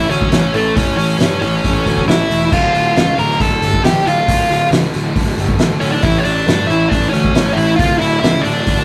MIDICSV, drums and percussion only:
0, 0, Header, 1, 2, 480
1, 0, Start_track
1, 0, Key_signature, -1, "minor"
1, 0, Tempo, 439560
1, 830, Time_signature, 4, 2, 24, 8
1, 9658, End_track
2, 0, Start_track
2, 0, Title_t, "Drums"
2, 121, Note_on_c, 9, 46, 63
2, 230, Note_off_c, 9, 46, 0
2, 233, Note_on_c, 9, 36, 99
2, 342, Note_off_c, 9, 36, 0
2, 349, Note_on_c, 9, 46, 94
2, 357, Note_on_c, 9, 38, 121
2, 458, Note_off_c, 9, 46, 0
2, 466, Note_off_c, 9, 38, 0
2, 591, Note_on_c, 9, 46, 82
2, 700, Note_off_c, 9, 46, 0
2, 835, Note_on_c, 9, 36, 125
2, 837, Note_on_c, 9, 46, 99
2, 944, Note_off_c, 9, 36, 0
2, 947, Note_off_c, 9, 46, 0
2, 1078, Note_on_c, 9, 46, 67
2, 1187, Note_off_c, 9, 46, 0
2, 1310, Note_on_c, 9, 46, 87
2, 1318, Note_on_c, 9, 38, 107
2, 1420, Note_off_c, 9, 46, 0
2, 1427, Note_off_c, 9, 38, 0
2, 1549, Note_on_c, 9, 46, 64
2, 1659, Note_off_c, 9, 46, 0
2, 1794, Note_on_c, 9, 36, 98
2, 1796, Note_on_c, 9, 46, 79
2, 1904, Note_off_c, 9, 36, 0
2, 1905, Note_off_c, 9, 46, 0
2, 2034, Note_on_c, 9, 36, 75
2, 2036, Note_on_c, 9, 46, 58
2, 2143, Note_off_c, 9, 36, 0
2, 2145, Note_off_c, 9, 46, 0
2, 2156, Note_on_c, 9, 36, 95
2, 2265, Note_off_c, 9, 36, 0
2, 2282, Note_on_c, 9, 46, 83
2, 2289, Note_on_c, 9, 38, 116
2, 2391, Note_off_c, 9, 46, 0
2, 2398, Note_off_c, 9, 38, 0
2, 2522, Note_on_c, 9, 46, 68
2, 2631, Note_off_c, 9, 46, 0
2, 2754, Note_on_c, 9, 36, 127
2, 2757, Note_on_c, 9, 49, 111
2, 2863, Note_off_c, 9, 36, 0
2, 2866, Note_off_c, 9, 49, 0
2, 3000, Note_on_c, 9, 46, 58
2, 3109, Note_off_c, 9, 46, 0
2, 3239, Note_on_c, 9, 46, 73
2, 3247, Note_on_c, 9, 38, 110
2, 3348, Note_off_c, 9, 46, 0
2, 3356, Note_off_c, 9, 38, 0
2, 3480, Note_on_c, 9, 46, 57
2, 3589, Note_off_c, 9, 46, 0
2, 3613, Note_on_c, 9, 38, 31
2, 3713, Note_on_c, 9, 36, 107
2, 3719, Note_on_c, 9, 46, 88
2, 3722, Note_off_c, 9, 38, 0
2, 3822, Note_off_c, 9, 36, 0
2, 3829, Note_off_c, 9, 46, 0
2, 3957, Note_on_c, 9, 46, 66
2, 4067, Note_off_c, 9, 46, 0
2, 4075, Note_on_c, 9, 36, 93
2, 4184, Note_off_c, 9, 36, 0
2, 4199, Note_on_c, 9, 46, 88
2, 4206, Note_on_c, 9, 38, 114
2, 4308, Note_off_c, 9, 46, 0
2, 4315, Note_off_c, 9, 38, 0
2, 4449, Note_on_c, 9, 46, 80
2, 4558, Note_off_c, 9, 46, 0
2, 4676, Note_on_c, 9, 36, 118
2, 4678, Note_on_c, 9, 46, 105
2, 4785, Note_off_c, 9, 36, 0
2, 4787, Note_off_c, 9, 46, 0
2, 4931, Note_on_c, 9, 46, 67
2, 5040, Note_off_c, 9, 46, 0
2, 5158, Note_on_c, 9, 46, 90
2, 5165, Note_on_c, 9, 38, 107
2, 5267, Note_off_c, 9, 46, 0
2, 5274, Note_off_c, 9, 38, 0
2, 5394, Note_on_c, 9, 46, 59
2, 5503, Note_off_c, 9, 46, 0
2, 5632, Note_on_c, 9, 36, 111
2, 5637, Note_on_c, 9, 46, 90
2, 5741, Note_off_c, 9, 36, 0
2, 5746, Note_off_c, 9, 46, 0
2, 5873, Note_on_c, 9, 46, 60
2, 5982, Note_off_c, 9, 46, 0
2, 5989, Note_on_c, 9, 36, 101
2, 6098, Note_off_c, 9, 36, 0
2, 6105, Note_on_c, 9, 46, 86
2, 6112, Note_on_c, 9, 38, 127
2, 6214, Note_off_c, 9, 46, 0
2, 6222, Note_off_c, 9, 38, 0
2, 6350, Note_on_c, 9, 46, 78
2, 6459, Note_off_c, 9, 46, 0
2, 6580, Note_on_c, 9, 46, 90
2, 6586, Note_on_c, 9, 36, 122
2, 6689, Note_off_c, 9, 46, 0
2, 6695, Note_off_c, 9, 36, 0
2, 6824, Note_on_c, 9, 46, 66
2, 6934, Note_off_c, 9, 46, 0
2, 7075, Note_on_c, 9, 46, 86
2, 7083, Note_on_c, 9, 38, 115
2, 7184, Note_off_c, 9, 46, 0
2, 7192, Note_off_c, 9, 38, 0
2, 7316, Note_on_c, 9, 46, 55
2, 7425, Note_off_c, 9, 46, 0
2, 7551, Note_on_c, 9, 36, 108
2, 7558, Note_on_c, 9, 46, 84
2, 7660, Note_off_c, 9, 36, 0
2, 7667, Note_off_c, 9, 46, 0
2, 7793, Note_on_c, 9, 46, 60
2, 7902, Note_off_c, 9, 46, 0
2, 7910, Note_on_c, 9, 36, 101
2, 8019, Note_off_c, 9, 36, 0
2, 8028, Note_on_c, 9, 46, 89
2, 8036, Note_on_c, 9, 38, 117
2, 8138, Note_off_c, 9, 46, 0
2, 8145, Note_off_c, 9, 38, 0
2, 8269, Note_on_c, 9, 46, 76
2, 8378, Note_off_c, 9, 46, 0
2, 8508, Note_on_c, 9, 36, 127
2, 8509, Note_on_c, 9, 46, 94
2, 8617, Note_off_c, 9, 36, 0
2, 8618, Note_off_c, 9, 46, 0
2, 8754, Note_on_c, 9, 46, 68
2, 8863, Note_off_c, 9, 46, 0
2, 8994, Note_on_c, 9, 46, 83
2, 9002, Note_on_c, 9, 38, 111
2, 9103, Note_off_c, 9, 46, 0
2, 9111, Note_off_c, 9, 38, 0
2, 9225, Note_on_c, 9, 46, 67
2, 9335, Note_off_c, 9, 46, 0
2, 9466, Note_on_c, 9, 36, 101
2, 9466, Note_on_c, 9, 46, 83
2, 9575, Note_off_c, 9, 36, 0
2, 9575, Note_off_c, 9, 46, 0
2, 9658, End_track
0, 0, End_of_file